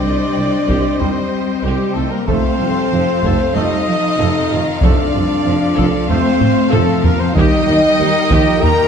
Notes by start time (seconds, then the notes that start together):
Already playing: G3 C4 D4 G4 C5 D5 D#5 G5
0.04 C2 D#4
0.36 C2 C4
0.68 C2 G4, taiko
0.98 C2 D#3 G3 C4 D#4 C5, taiko low
1.63 C2 G3 G4
1.94 C2 A3 D#4 A4
2.10 A#3 A#4
2.26 F1 F2 F3 A3 C4 F4 A4 C5 F5, taiko
2.59 F1 F2 G3 F4
2.91 F1 F2 F3 C4
3.23 F1 F2 A3 A4, taiko
3.55 F1 F2 F3 G3 A3 D#4 F4 D#5, taiko low
3.88 F3
4.19 F1 F2 C3 A4
4.51 F1 F2 D#3 F4
4.81 F1 F2 F3 A3 D4 A4 D5, taiko
5.13 F1 F2 G3 F4
5.44 F1 F2 F3 C4
5.76 F1 F2 A4, taiko
6.08 F1 F2 F3 A3 C4 F4 C5, taiko low
6.41 taiko low-mid
6.72 F1 F2 F3 A3 A4, taiko low-mid
7.03 F1 F2 A#3 F4 A#4, taiko low
7.20 C4 C5
7.34 D#2 G3 A#3 D#4 G4 A#4 D#5 G5, taiko
7.67 D#2 D#4
7.99 D#2 G3 A#3
8.31 D#2 F3 G4, taiko
8.61 D#2 D#3 D#4 A#4 A#5, taiko low